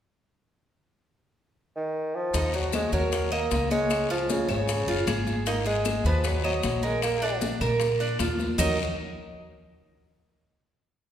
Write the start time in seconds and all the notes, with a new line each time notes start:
1.76 D#3
2.16 F3
2.33 D#2 D#4, high bongo, high conga, long guiro, maracas
2.53 F#3 F#4, high conga, maracas
2.72 G#3, high bongo, high conga, short guiro, claves, maracas
2.92 D#2 F#3 A#4, high conga, short guiro, maracas
3.12 high bongo, high conga, long guiro, maracas
3.31 A#3 D#5, high conga, claves, maracas
3.51 C#2, high bongo, low bongo, high conga, short guiro, maracas
3.71 G#3 C#5, high conga, short guiro, maracas
3.90 high bongo, high conga, long guiro, claves, maracas
4.10 F3 F4, high bongo, high conga, maracas
4.29 C#3, high bongo, high conga, short guiro, maracas
4.48 G#1 C#3 C#5, high bongo, high conga, short guiro, claves, maracas
4.68 high bongo, high conga, long guiro, maracas
4.87 F#1 F4, high conga, maracas
5.07 G#1 G#4, high bongo, low bongo, high conga, short guiro, claves, maracas
5.27 high bongo, high conga, short guiro, maracas
5.46 A#3 D#4, high bongo, high conga, long guiro, maracas
5.65 G#3 G#4, high conga, maracas
5.85 high bongo, high conga, short guiro, claves, maracas
6.04 D#2 F3 B4, short guiro, maracas
6.24 F#3, high bongo, long guiro, maracas
6.44 F#3 D#5, high conga, claves, maracas
6.63 A#1, high bongo, low bongo, high conga, short guiro, maracas
6.82 G#3 A#4, short guiro, maracas
7.02 A#3, high bongo, high conga, long guiro, claves, maracas
7.22 D4, high bongo, high conga, maracas
7.41 high bongo, high conga, short guiro, maracas
7.61 A#2 A#4, high bongo, high conga, short guiro, claves, maracas
7.80 high bongo, high conga, long guiro, maracas
8.00 D4, high conga, maracas
8.19 D#2 F4, high bongo, low bongo, high conga, short guiro, claves, maracas
8.39 high bongo, high conga, short guiro, maracas
8.58 D#2 F#3 D#4 A#4 D#5, low bongo, low conga, long guiro, claves, maracas